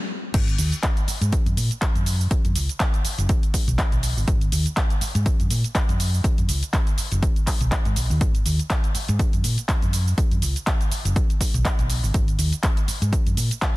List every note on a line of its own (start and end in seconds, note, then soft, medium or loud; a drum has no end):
0.34 0.55 G#1 loud
0.34 kick loud
0.34 closed hi-hat loud
0.34 crash loud
0.34 shaker soft
0.48 closed hi-hat soft
0.48 shaker soft
0.58 0.70 D#2 medium
0.58 open hi-hat loud
0.58 shaker medium
0.72 closed hi-hat soft
0.72 shaker soft
0.83 kick loud
0.83 clap loud
0.83 closed hi-hat medium
0.83 shaker soft
0.97 closed hi-hat soft
0.97 shaker soft
1.08 muted fingered electric bass stroke soft
1.08 open hi-hat medium
1.08 shaker medium
1.21 1.31 G#2 loud
1.21 closed hi-hat soft
1.21 shaker soft
1.32 muted fingered electric bass stroke soft
1.32 kick loud
1.32 closed hi-hat loud
1.32 shaker soft
1.46 1.55 F#2 medium
1.46 closed hi-hat soft
1.46 shaker soft
1.57 1.69 A#2 medium
1.57 open hi-hat loud
1.57 shaker medium
1.71 closed hi-hat soft
1.71 shaker soft
1.82 kick loud
1.82 clap loud
1.82 closed hi-hat loud
1.82 shaker soft
1.95 2.28 F#2 medium
1.95 closed hi-hat soft
1.95 shaker soft
2.06 open hi-hat medium
2.06 shaker medium
2.21 shaker soft
2.31 kick loud
2.31 closed hi-hat loud
2.31 shaker soft
2.45 2.54 F#2 medium
2.45 closed hi-hat soft
2.45 shaker soft
2.55 2.67 C#2 medium
2.55 open hi-hat loud
2.55 shaker medium
2.69 closed hi-hat soft
2.69 shaker soft
2.80 kick loud
2.80 clap loud
2.80 closed hi-hat medium
2.80 shaker soft
2.94 closed hi-hat soft
2.94 shaker soft
3.05 muted fingered electric bass stroke soft
3.05 open hi-hat medium
3.05 shaker medium
3.18 3.27 F#1 loud
3.18 closed hi-hat soft
3.18 shaker soft
3.29 kick loud
3.29 closed hi-hat medium
3.29 shaker soft
3.43 closed hi-hat soft
3.43 shaker soft
3.54 kick medium
3.54 open hi-hat loud
3.54 shaker medium
3.68 3.77 B1 medium
3.68 closed hi-hat soft
3.68 shaker soft
3.78 kick loud
3.78 clap loud
3.78 closed hi-hat loud
3.78 shaker soft
3.92 4.13 B1 medium
3.92 closed hi-hat soft
3.92 shaker soft
4.03 open hi-hat medium
4.03 shaker medium
4.17 4.26 G#1 medium
4.17 shaker soft
4.28 kick loud
4.28 closed hi-hat medium
4.28 shaker soft
4.41 closed hi-hat soft
4.41 shaker soft
4.52 4.64 D#2 medium
4.52 open hi-hat loud
4.52 shaker medium
4.66 closed hi-hat soft
4.66 shaker soft
4.77 kick loud
4.77 clap loud
4.77 closed hi-hat medium
4.77 shaker soft
4.90 closed hi-hat soft
4.90 shaker soft
5.01 muted fingered electric bass stroke soft
5.01 open hi-hat loud
5.01 shaker medium
5.15 5.24 G#2 loud
5.15 closed hi-hat soft
5.15 shaker soft
5.26 muted fingered electric bass stroke soft
5.26 kick loud
5.26 closed hi-hat medium
5.26 shaker soft
5.40 5.49 F#2 medium
5.40 closed hi-hat soft
5.40 shaker soft
5.50 5.62 A#2 medium
5.50 open hi-hat loud
5.50 shaker medium
5.64 closed hi-hat soft
5.64 shaker soft
5.75 kick loud
5.75 clap loud
5.75 closed hi-hat loud
5.75 shaker soft
5.89 6.22 F#2 medium
5.89 closed hi-hat soft
5.89 shaker soft
6.00 open hi-hat loud
6.00 shaker medium
6.14 shaker soft
6.24 muted fingered electric bass stroke soft
6.24 kick loud
6.24 closed hi-hat medium
6.24 shaker soft
6.38 6.47 F#2 medium
6.38 closed hi-hat soft
6.38 shaker soft
6.49 6.61 C#2 medium
6.49 open hi-hat loud
6.49 shaker medium
6.63 closed hi-hat soft
6.63 shaker soft
6.73 kick loud
6.73 clap loud
6.73 closed hi-hat medium
6.73 shaker soft
6.87 closed hi-hat soft
6.87 shaker soft
6.98 muted fingered electric bass stroke soft
6.98 open hi-hat medium
6.98 shaker medium
7.12 7.21 F#1 loud
7.12 closed hi-hat soft
7.12 shaker soft
7.23 kick loud
7.23 closed hi-hat medium
7.23 shaker soft
7.36 closed hi-hat soft
7.36 shaker soft
7.47 kick medium
7.47 clap medium
7.47 open hi-hat loud
7.47 shaker medium
7.61 7.70 B1 medium
7.61 closed hi-hat soft
7.61 shaker soft
7.72 kick loud
7.72 clap loud
7.72 closed hi-hat medium
7.72 shaker soft
7.85 7.95 G#2 medium
7.85 closed hi-hat soft
7.85 shaker soft
7.96 8.08 B1 medium
7.96 open hi-hat loud
7.96 shaker medium
8.10 8.19 D#2 loud
8.10 shaker soft
8.21 8.42 G#1 loud
8.21 kick loud
8.21 closed hi-hat medium
8.21 shaker soft
8.35 closed hi-hat soft
8.35 shaker soft
8.46 8.57 D#2 medium
8.46 open hi-hat loud
8.46 shaker medium
8.59 closed hi-hat soft
8.59 shaker soft
8.70 kick loud
8.70 clap loud
8.70 closed hi-hat medium
8.70 shaker soft
8.84 closed hi-hat soft
8.84 shaker soft
8.95 muted fingered electric bass stroke soft
8.95 open hi-hat medium
8.95 shaker medium
9.08 9.18 G#2 loud
9.08 closed hi-hat soft
9.08 shaker soft
9.19 muted fingered electric bass stroke soft
9.19 kick loud
9.19 closed hi-hat medium
9.19 shaker soft
9.33 9.42 F#2 medium
9.33 closed hi-hat soft
9.33 shaker soft
9.44 9.56 A#2 medium
9.44 open hi-hat loud
9.44 shaker medium
9.58 closed hi-hat soft
9.58 shaker soft
9.69 kick loud
9.69 clap loud
9.69 closed hi-hat medium
9.69 shaker soft
9.82 10.15 F#2 medium
9.82 closed hi-hat soft
9.82 shaker soft
9.93 open hi-hat medium
9.93 shaker medium
10.08 shaker soft
10.18 kick loud
10.18 closed hi-hat medium
10.18 shaker soft
10.31 10.41 F#2 medium
10.31 closed hi-hat soft
10.31 shaker soft
10.42 10.54 C#2 medium
10.42 open hi-hat loud
10.42 shaker medium
10.56 closed hi-hat soft
10.56 shaker soft
10.67 kick loud
10.67 clap loud
10.67 closed hi-hat medium
10.67 shaker soft
10.81 closed hi-hat soft
10.81 shaker soft
10.91 muted fingered electric bass stroke soft
10.91 open hi-hat medium
10.91 shaker medium
11.05 11.14 F#1 loud
11.05 closed hi-hat soft
11.05 shaker soft
11.16 kick loud
11.16 closed hi-hat medium
11.16 shaker soft
11.30 closed hi-hat soft
11.30 shaker soft
11.41 kick medium
11.41 open hi-hat loud
11.41 shaker medium
11.54 11.64 B1 medium
11.54 closed hi-hat soft
11.54 shaker soft
11.65 kick loud
11.65 clap loud
11.65 closed hi-hat medium
11.65 shaker soft
11.79 11.99 B1 medium
11.79 closed hi-hat soft
11.79 shaker soft
11.90 open hi-hat medium
11.90 shaker medium
12.03 12.13 G#1 medium
12.03 shaker soft
12.14 kick loud
12.14 closed hi-hat loud
12.14 shaker soft
12.28 closed hi-hat soft
12.28 shaker soft
12.39 12.51 D#2 medium
12.39 open hi-hat loud
12.39 shaker medium
12.53 closed hi-hat soft
12.53 shaker soft
12.63 kick loud
12.63 clap loud
12.63 closed hi-hat medium
12.63 shaker soft
12.77 closed hi-hat soft
12.77 shaker soft
12.88 muted fingered electric bass stroke soft
12.88 open hi-hat medium
12.88 shaker medium
13.02 13.11 G#2 loud
13.02 closed hi-hat soft
13.02 shaker soft
13.13 muted fingered electric bass stroke soft
13.13 kick loud
13.13 closed hi-hat loud
13.13 shaker soft
13.26 13.36 F#2 medium
13.26 closed hi-hat soft
13.26 shaker soft
13.37 13.49 A#2 medium
13.37 open hi-hat loud
13.37 shaker medium
13.51 closed hi-hat soft
13.51 shaker soft
13.62 kick loud
13.62 clap loud
13.62 closed hi-hat loud
13.62 shaker medium